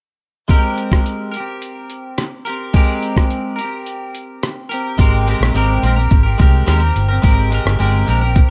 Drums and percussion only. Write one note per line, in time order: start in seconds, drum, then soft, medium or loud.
0.49 kick medium
0.49 closed hi-hat medium
0.78 closed hi-hat soft
0.92 kick medium
0.92 cross-stick medium
1.06 closed hi-hat medium
1.34 closed hi-hat soft
1.62 closed hi-hat medium
1.90 closed hi-hat soft
2.18 cross-stick medium
2.18 closed hi-hat medium
2.46 closed hi-hat soft
2.74 kick medium
2.74 closed hi-hat medium
3.02 closed hi-hat soft
3.17 kick medium
3.17 cross-stick loud
3.30 closed hi-hat medium
3.58 closed hi-hat soft
3.86 closed hi-hat medium
4.15 closed hi-hat soft
4.43 cross-stick medium
4.43 closed hi-hat medium
4.71 closed hi-hat soft
4.99 kick loud
4.99 closed hi-hat medium
5.27 closed hi-hat soft
5.43 cross-stick loud
5.55 closed hi-hat medium
5.83 closed hi-hat soft
6.11 kick medium
6.11 closed hi-hat medium
6.39 kick medium
6.39 closed hi-hat soft
6.68 cross-stick medium
6.68 closed hi-hat medium
6.96 closed hi-hat soft
7.24 kick loud
7.24 closed hi-hat medium
7.52 closed hi-hat soft
7.67 cross-stick loud
7.80 closed hi-hat medium
8.08 closed hi-hat medium
8.36 kick medium
8.36 closed hi-hat medium